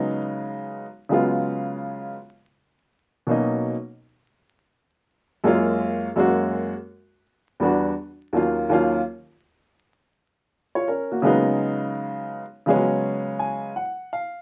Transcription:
X:1
M:4/4
L:1/16
Q:"Swing 16ths" 1/4=83
K:Dbmix
V:1 name="Upright piano"
z16 | z16 | z16 | z8 z3 [Fd] [DB] [B,G]2 z |
z8 z2 a2 g2 f2 |]
V:2 name="Upright piano"
[D,G,A,CE]4 z2 [D,G,A,CF]6 z4 | z2 [=B,,^F,^A,^C^D]2 z8 z2 [G,,_A,_B,_D=F]2- | [G,,A,B,DF]2 [G,,A,B,DG]2 z6 [_F,,=G,C=D_G]2 z2 [E,,_G,B,_D=F]2 | [E,,G,B,DF]2 z12 [D,G,A,CE]2- |
[D,G,A,CE]4 z2 [D,F,G,A,CD]6 z4 |]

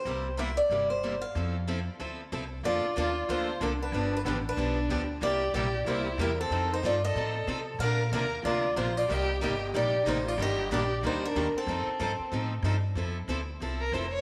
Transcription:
X:1
M:4/4
L:1/8
Q:"Swing" 1/4=186
K:F
V:1 name="Steel-string acoustic guitar"
c2 e d2 c2 f- | f6 z2 | [K:Bb] d2 d2 c2 B _c- | _c =B G B4 z |
d2 d2 c2 B A- | A c d e4 z | f2 f2 d2 c d | e2 e2 d2 c d |
e2 d2 c B2 A- | A6 z2 | [K:F] z8 |]
V:2 name="Violin"
z8 | z8 | [K:Bb] F2 F2 F2 D D- | D D =B, D4 z |
G2 G2 =E2 E C- | C E F A4 z | B2 B2 F2 F F | G2 G2 G2 E F |
G2 G2 E D2 C- | C6 z2 | [K:F] z4 z B c _d |]
V:3 name="Steel-string acoustic guitar"
[C,G,B,EG] z [C,G,B,EG] z [C,G,B,EG] z [C,G,B,EG] z | [F,CEA] z [F,CEA] z [F,CEA] z [F,CEA] z | [K:Bb] [D,F,B,DA] z [D,F,B,DA] z [D,F,B,DA] z [D,F,B,DA] z | [D,F,=B,DG] z [D,F,B,DG] z [D,F,B,DG] z [D,F,B,DG] z |
[C,G,B,=EG] z [C,G,B,EG] z [C,G,B,EG] z [C,G,B,EG] z | [F,CEA] z [F,CEA] z [F,CEA] z [F,CEA] z | [C,F,B,DB] z [C,F,B,DB] z [C,F,B,DB] z [C,F,B,DB] z | [C,G,B,EG] z [C,G,B,EG] z [C,G,B,EG] z [C,G,B,EG] z |
[E,G,B,DG] z [E,G,B,DG] z [E,G,B,DG] z [E,G,B,DG] z | [F,CEA] z [F,CEA] z [F,CEA] z [F,CEA] z | [K:F] [F,CEA] z [F,CEA] z [F,CEA] z [F,CEA] z |]
V:4 name="Steel-string acoustic guitar"
[C,G,B,EG] z [C,G,B,EG] z [C,G,B,EG] z [C,G,B,EG] z | [F,CEA] z [F,CEA] z [F,CEA] z [F,CEA] z | [K:Bb] [D,F,B,DA] z [D,F,B,DA] z [D,F,B,DA] z [D,F,B,DA] z | [D,F,=B,DG] z [D,F,B,DG] z [D,F,B,DG] z [D,F,B,DG] z |
[C,G,B,=EG] z [C,G,B,EG] z [C,G,B,EG] z [C,G,B,EG] z | [F,CEA] z [F,CEA] z [F,CEA] z [F,CEA] z | [C,F,B,DB] z [C,F,B,DB] z [C,F,B,DB] z [C,F,B,DB] z | [C,G,B,EG] z [C,G,B,EG] z [C,G,B,EG] z [C,G,B,EG] z |
[E,G,B,DG] z [E,G,B,DG] z [E,G,B,DG] z [E,G,B,DG] z | [F,CEA] z [F,CEA] z [F,CEA] z [F,CEA] z | [K:F] [F,CEA] z [F,CEA] z [F,CEA] z [F,CEA] z |]
V:5 name="Upright bass" clef=bass
C,,4 G,,,4 | F,,4 D,,2 C,,2 | [K:Bb] F,, z E,,2 D,,2 C,,2 | G,,,2 A,,,2 =B,,,2 D,,2 |
C,,2 B,,,2 C,,2 =E,,2 | F,,2 G,,2 A,,2 C,2 | B,,2 E,,2 D,,2 B,,,2 | C,,2 G,,,2 B,,,2 A,,,2 |
G,,,2 B,,,2 D,,2 E,, z | F,, z G,, z A,,2 G,,2 | [K:F] F,,2 D,,2 C,,2 F,,,2 |]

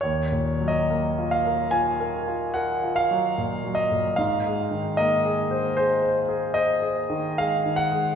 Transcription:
X:1
M:5/4
L:1/16
Q:1/4=74
K:Ebdor
V:1 name="Grand piano"
d3 e3 f2 a4 g2 f4 e2 | f4 e4 c4 e4 f2 g2 |]
V:2 name="Grand piano"
(3E,,2 B,,2 G,2 (3B,2 F2 B2 (3F2 B2 F2 (3B2 F2 G,2 (3B,,2 G,2 B,,2 | (3A,,2 A,2 E,2 (3B,2 A2 c2 (3A2 c2 A2 (3c2 A2 E,2 (3A,2 E,2 A,2 |]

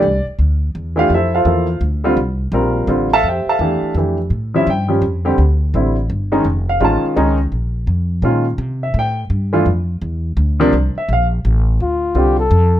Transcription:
X:1
M:3/4
L:1/8
Q:"Swing" 1/4=168
K:F
V:1 name="Flugelhorn"
z6 | z6 | z6 | z6 |
z6 | z6 | z6 | z6 |
z6 | z6 | z6 | [K:Dm] F2 G A3 |]
V:2 name="Grand piano"
d z4 [Ff] | [EAce] [FAcf]3 z2 | z4 z [Aefa] | [Gceg] [Aefa]3 z2 |
z e g z3 | z6 | z f a z3 | z6 |
z e g z3 | z6 | z e f z3 | [K:Dm] z6 |]
V:3 name="Grand piano"
z4 z [E,A,DG] | z2 [F,B,EA] z2 [D,G,CF] | z2 [G,CFB]2 [D,G,CF] z | z2 [E,A,DG]2 [E,A,DG] z |
z [F,G,^CE] z [F,G,CG] z [D,G,=CG] | z2 [D,G,CE] z2 [_E,_A,_D_E] | z2 [_E,^G,^CF]2 [E,G,C_E] z | z4 [_E,_A,_DF] z |
z4 z [E,A,DF] | z4 z [C,F,B,D] | z6 | [K:Dm] z2 [D,G,CF] z3 |]
V:4 name="Upright bass" clef=bass
C,, z D,,2 E,,2 | F,,2 E,,2 D,,2 | C,,2 B,,,2 A,,,2 | F,, z E,, z F,,2 |
A,,2 G,,2 F,,2 | D,,2 A,,,2 G,,,2 | F,,,2 A,,, z ^C,,2 | B,,,2 F,,2 B,,2 |
C,2 A,,2 G,,2 | F,,2 E,,2 D,,2 | C,, z B,,,2 A,,,2 | [K:Dm] D,,2 C,,2 F,,2 |]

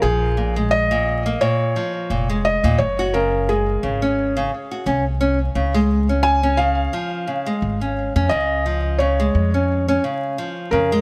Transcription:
X:1
M:4/4
L:1/16
Q:"Swing 16ths" 1/4=87
K:Db
V:1 name="Felt piano"
A4 e4 d6 e2 | d2 B2 A8 z4 | z4 a2 f8- f2 | e4 d6 z4 B2 |]
V:2 name="Nylon-string guitar" clef=bass
F,2 B,, A,2 B,,2 B, B,,2 F,2 B,, A,2 B,, | z G D,2 A,2 D, D2 D, z G D z D z | D, A,2 D2 D D,2 F,2 D, A,2 D2 D | D,2 F,2 D, A,2 D2 D D,2 F,2 D, A, |]
V:3 name="Upright bass" clef=bass
B,,,8 z4 F,,,3 E,, | G,,,6 A,,,4 z2 C,,4 | D,,8 z4 A,,,3 F,, | D,,6 F,,4 z4 F,, z |]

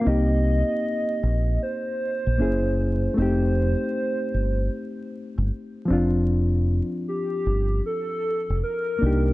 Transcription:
X:1
M:4/4
L:1/16
Q:"Swing 16ths" 1/4=77
K:Dphr
V:1 name="Soft synth lead"
e8 c8 | c12 z4 | z4 G4 A4 B4 |]
V:2 name="Reed electric piano"
[B,CEG]12 [^A,^C=E^G]4 | [A,CEG]12- [A,CEG]2 [F,CDF]2- | [F,CDF]12- [F,CDF]2 [B,DEG]2 |]
V:3 name="Fingered electric bass" clef=bass
C,,3 z3 B,,,2 z3 B,,, ^F,,,4 | F,,,3 z3 G,,,2 z3 G,,, z2 F,,,2- | F,,,3 z3 G,,,2 z3 F,,, z2 C,,2 |]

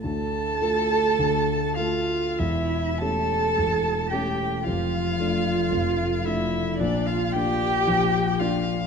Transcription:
X:1
M:4/4
L:1/16
Q:1/4=55
K:Dm
V:1 name="Violin"
a6 f2 e2 a4 g2 | f6 e2 d f g4 f2 |]
V:2 name="Cello"
A6 F2 E2 A4 G2 | F6 E2 D F G4 F2 |]
V:3 name="Grand piano"
[D,,D,]2 [A,FA]2 [D,,D,]2 [A,FA]2 [E,,,E,,]2 [A,^CG]2 [E,,,E,,]2 [A,CG]2 | [F,,,F,,]2 [A,DF]2 [F,,,F,,]2 [A,DF]2 [B,,,B,,]2 [B,DF]2 [B,,,B,,]2 [B,DF]2 |]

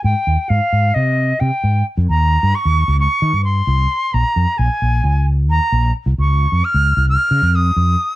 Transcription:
X:1
M:9/8
L:1/16
Q:3/8=88
K:Bbdor
V:1 name="Flute"
g4 f4 e4 g4 z2 | b4 d'4 d'4 c'6 | b4 a6 z2 b4 z2 | d'4 f'4 f'4 e'6 |]
V:2 name="Fretless electric bass" clef=bass
A,, z E,, z A,, z A,,2 C,4 C, z A,,2 z F,, | E,,3 G,, z E,,2 D,,2 z E, G,,3 C,,2 z2 | B,,, z F,, z B,,, z B,,,2 D,,4 E,, z B,,,2 z C,, | D,,3 F,, z D,,2 C,,2 z D, F,,3 F,,2 z2 |]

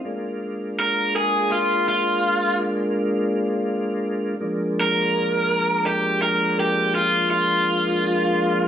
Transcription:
X:1
M:12/8
L:1/8
Q:3/8=55
K:Bbmix
V:1 name="Overdriven electric guitar"
z2 B A F F2 z4 z | z B3 G B G F F4 |]
V:2 name="Tonewheel organ"
[A,B,DF]12 | [F,A,B,D]12 |]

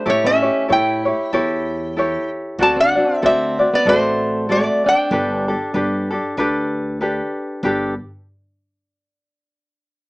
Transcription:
X:1
M:4/4
L:1/16
Q:"Swing" 1/4=95
K:G
V:1 name="Resonator guitar played with a steel bar"
^c e3 g8- g2 z2 | a f3 e3 d c4 d2 g2- | g12 z4 | z16 |]
V:2 name="Ukulele"
[EGA^c]2 [EGc]2 [EGAc]2 [EGc]2 [EGAc]4 [EGAc]4 | [CFAd]2 [CFd]2 [CFAd]2 [CFd]2 [CFAd]4 [CFAd]2 [Cd]2 | [DGAB]2 [DGA]2 [DGAB]2 [DGA]2 [DGAB]4 [DGAB]4 | [DGAB]2 z12 z2 |]
V:3 name="Steel-string acoustic guitar"
A, ^C3 E8- E2 z2 | F D3 C3 B, A,4 A,2 D2- | D12 z4 | z16 |]
V:4 name="Upright bass" clef=bass
A,,4 A,,4 E,,8 | D,,4 D,,4 A,,,8 | G,,,4 G,,,4 D,,8 | G,,,2 z12 z2 |]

